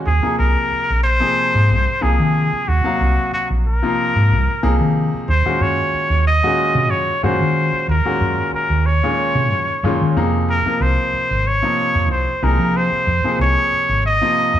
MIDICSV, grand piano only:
0, 0, Header, 1, 2, 480
1, 0, Start_track
1, 0, Tempo, 650054
1, 48, Time_signature, 4, 2, 24, 8
1, 10778, End_track
2, 0, Start_track
2, 0, Title_t, "Grand piano"
2, 0, Program_c, 0, 0
2, 165, Note_on_c, 0, 53, 58
2, 167, Note_on_c, 0, 58, 58
2, 168, Note_on_c, 0, 48, 60
2, 170, Note_on_c, 0, 63, 53
2, 171, Note_on_c, 0, 68, 69
2, 762, Note_off_c, 0, 53, 0
2, 763, Note_off_c, 0, 48, 0
2, 763, Note_off_c, 0, 58, 0
2, 765, Note_off_c, 0, 63, 0
2, 765, Note_off_c, 0, 68, 0
2, 886, Note_on_c, 0, 48, 75
2, 886, Note_on_c, 0, 53, 69
2, 889, Note_on_c, 0, 58, 64
2, 890, Note_on_c, 0, 63, 61
2, 894, Note_on_c, 0, 68, 75
2, 1389, Note_off_c, 0, 53, 0
2, 1390, Note_off_c, 0, 48, 0
2, 1391, Note_off_c, 0, 58, 0
2, 1391, Note_off_c, 0, 63, 0
2, 1393, Note_off_c, 0, 68, 0
2, 1484, Note_on_c, 0, 53, 64
2, 1487, Note_on_c, 0, 58, 67
2, 1488, Note_on_c, 0, 48, 75
2, 1490, Note_on_c, 0, 63, 63
2, 1492, Note_on_c, 0, 68, 82
2, 1988, Note_off_c, 0, 53, 0
2, 1990, Note_off_c, 0, 48, 0
2, 1990, Note_off_c, 0, 58, 0
2, 1991, Note_off_c, 0, 63, 0
2, 1992, Note_off_c, 0, 68, 0
2, 2096, Note_on_c, 0, 48, 61
2, 2098, Note_on_c, 0, 58, 60
2, 2100, Note_on_c, 0, 63, 57
2, 2102, Note_on_c, 0, 54, 59
2, 2104, Note_on_c, 0, 77, 71
2, 2691, Note_off_c, 0, 48, 0
2, 2692, Note_off_c, 0, 58, 0
2, 2693, Note_off_c, 0, 63, 0
2, 2694, Note_off_c, 0, 54, 0
2, 2695, Note_off_c, 0, 77, 0
2, 2824, Note_on_c, 0, 53, 65
2, 2826, Note_on_c, 0, 48, 74
2, 2829, Note_on_c, 0, 58, 68
2, 2829, Note_on_c, 0, 63, 63
2, 2830, Note_on_c, 0, 65, 77
2, 3322, Note_off_c, 0, 53, 0
2, 3323, Note_off_c, 0, 48, 0
2, 3324, Note_off_c, 0, 58, 0
2, 3324, Note_off_c, 0, 63, 0
2, 3325, Note_off_c, 0, 65, 0
2, 3418, Note_on_c, 0, 48, 84
2, 3419, Note_on_c, 0, 53, 78
2, 3419, Note_on_c, 0, 58, 76
2, 3420, Note_on_c, 0, 63, 76
2, 3420, Note_on_c, 0, 68, 95
2, 3901, Note_off_c, 0, 48, 0
2, 3901, Note_off_c, 0, 53, 0
2, 3902, Note_off_c, 0, 58, 0
2, 3902, Note_off_c, 0, 63, 0
2, 3902, Note_off_c, 0, 68, 0
2, 4027, Note_on_c, 0, 46, 64
2, 4028, Note_on_c, 0, 56, 58
2, 4029, Note_on_c, 0, 51, 63
2, 4032, Note_on_c, 0, 66, 72
2, 4033, Note_on_c, 0, 61, 54
2, 4618, Note_off_c, 0, 46, 0
2, 4619, Note_off_c, 0, 56, 0
2, 4620, Note_off_c, 0, 51, 0
2, 4621, Note_off_c, 0, 66, 0
2, 4622, Note_off_c, 0, 61, 0
2, 4748, Note_on_c, 0, 46, 71
2, 4753, Note_on_c, 0, 51, 65
2, 4753, Note_on_c, 0, 61, 65
2, 4754, Note_on_c, 0, 56, 65
2, 4755, Note_on_c, 0, 66, 85
2, 5245, Note_off_c, 0, 46, 0
2, 5247, Note_off_c, 0, 51, 0
2, 5247, Note_off_c, 0, 61, 0
2, 5248, Note_off_c, 0, 56, 0
2, 5249, Note_off_c, 0, 66, 0
2, 5337, Note_on_c, 0, 46, 73
2, 5342, Note_on_c, 0, 51, 65
2, 5342, Note_on_c, 0, 56, 66
2, 5343, Note_on_c, 0, 61, 68
2, 5345, Note_on_c, 0, 66, 80
2, 5838, Note_off_c, 0, 46, 0
2, 5840, Note_off_c, 0, 51, 0
2, 5841, Note_off_c, 0, 56, 0
2, 5841, Note_off_c, 0, 61, 0
2, 5842, Note_off_c, 0, 66, 0
2, 5946, Note_on_c, 0, 51, 55
2, 5947, Note_on_c, 0, 46, 61
2, 5948, Note_on_c, 0, 66, 72
2, 5950, Note_on_c, 0, 56, 59
2, 5950, Note_on_c, 0, 61, 62
2, 6538, Note_off_c, 0, 46, 0
2, 6538, Note_off_c, 0, 51, 0
2, 6539, Note_off_c, 0, 66, 0
2, 6540, Note_off_c, 0, 56, 0
2, 6540, Note_off_c, 0, 61, 0
2, 6669, Note_on_c, 0, 46, 71
2, 6673, Note_on_c, 0, 51, 67
2, 6673, Note_on_c, 0, 56, 68
2, 6674, Note_on_c, 0, 65, 83
2, 6675, Note_on_c, 0, 61, 65
2, 7164, Note_off_c, 0, 46, 0
2, 7166, Note_off_c, 0, 51, 0
2, 7166, Note_off_c, 0, 56, 0
2, 7167, Note_off_c, 0, 61, 0
2, 7167, Note_off_c, 0, 65, 0
2, 7264, Note_on_c, 0, 46, 81
2, 7267, Note_on_c, 0, 56, 77
2, 7268, Note_on_c, 0, 61, 76
2, 7269, Note_on_c, 0, 51, 80
2, 7272, Note_on_c, 0, 65, 88
2, 7503, Note_off_c, 0, 46, 0
2, 7505, Note_off_c, 0, 51, 0
2, 7505, Note_off_c, 0, 56, 0
2, 7505, Note_off_c, 0, 61, 0
2, 7506, Note_on_c, 0, 48, 83
2, 7507, Note_off_c, 0, 65, 0
2, 7507, Note_on_c, 0, 58, 75
2, 7508, Note_on_c, 0, 53, 72
2, 7510, Note_on_c, 0, 63, 77
2, 7512, Note_on_c, 0, 68, 81
2, 7804, Note_off_c, 0, 48, 0
2, 7805, Note_off_c, 0, 53, 0
2, 7805, Note_off_c, 0, 58, 0
2, 7806, Note_off_c, 0, 63, 0
2, 7807, Note_off_c, 0, 68, 0
2, 7870, Note_on_c, 0, 48, 63
2, 7873, Note_on_c, 0, 58, 57
2, 7875, Note_on_c, 0, 53, 58
2, 7877, Note_on_c, 0, 63, 54
2, 7880, Note_on_c, 0, 70, 71
2, 8457, Note_off_c, 0, 48, 0
2, 8458, Note_off_c, 0, 58, 0
2, 8459, Note_off_c, 0, 53, 0
2, 8460, Note_off_c, 0, 63, 0
2, 8462, Note_off_c, 0, 70, 0
2, 8582, Note_on_c, 0, 48, 71
2, 8587, Note_on_c, 0, 53, 66
2, 8587, Note_on_c, 0, 58, 61
2, 8589, Note_on_c, 0, 63, 69
2, 8590, Note_on_c, 0, 65, 78
2, 9077, Note_off_c, 0, 48, 0
2, 9080, Note_off_c, 0, 53, 0
2, 9080, Note_off_c, 0, 58, 0
2, 9081, Note_off_c, 0, 63, 0
2, 9081, Note_off_c, 0, 65, 0
2, 9175, Note_on_c, 0, 48, 68
2, 9175, Note_on_c, 0, 53, 67
2, 9177, Note_on_c, 0, 58, 62
2, 9178, Note_on_c, 0, 63, 67
2, 9179, Note_on_c, 0, 68, 75
2, 9671, Note_off_c, 0, 48, 0
2, 9671, Note_off_c, 0, 53, 0
2, 9672, Note_off_c, 0, 58, 0
2, 9672, Note_off_c, 0, 63, 0
2, 9673, Note_off_c, 0, 68, 0
2, 9778, Note_on_c, 0, 48, 63
2, 9780, Note_on_c, 0, 53, 57
2, 9784, Note_on_c, 0, 58, 59
2, 9784, Note_on_c, 0, 63, 59
2, 9786, Note_on_c, 0, 68, 70
2, 10365, Note_off_c, 0, 48, 0
2, 10366, Note_off_c, 0, 53, 0
2, 10368, Note_off_c, 0, 58, 0
2, 10368, Note_off_c, 0, 63, 0
2, 10369, Note_off_c, 0, 68, 0
2, 10496, Note_on_c, 0, 53, 68
2, 10498, Note_on_c, 0, 48, 74
2, 10498, Note_on_c, 0, 58, 69
2, 10502, Note_on_c, 0, 63, 65
2, 10502, Note_on_c, 0, 65, 84
2, 10778, Note_off_c, 0, 48, 0
2, 10778, Note_off_c, 0, 53, 0
2, 10778, Note_off_c, 0, 58, 0
2, 10778, Note_off_c, 0, 63, 0
2, 10778, Note_off_c, 0, 65, 0
2, 10778, End_track
0, 0, End_of_file